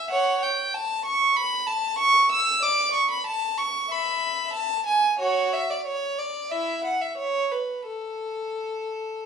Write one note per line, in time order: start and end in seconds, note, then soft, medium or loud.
0.10 0.41 C#5 medium
0.10 0.42 F#5 loud
0.42 0.74 G5 medium
0.74 1.06 A5 loud
1.06 1.36 C#6 loud
1.36 1.68 B5 loud
1.66 1.99 A5 loud
1.98 2.30 C#6 loud
2.32 2.63 E6 loud
2.62 2.92 D5 medium
2.62 2.95 D6 loud
2.93 3.10 C#6 medium
3.11 3.27 B5 medium
3.26 3.58 A5 loud
3.58 3.91 C#6 medium
3.91 4.50 E5 medium
3.91 4.55 B5 medium
4.53 4.85 A5 loud
4.86 5.18 G#5 medium
5.19 5.50 F#4 medium
5.19 5.51 C#5 medium
5.53 5.69 E5 medium
5.70 5.86 D5 medium
5.86 6.18 C#5 medium
6.18 6.51 D5 medium
6.51 6.82 E4 medium
6.51 6.85 E5 medium
6.84 7.01 F#5 medium
7.01 7.18 E5 medium
7.18 7.52 C#5 medium
7.51 7.87 B4 medium
7.87 9.26 A4 medium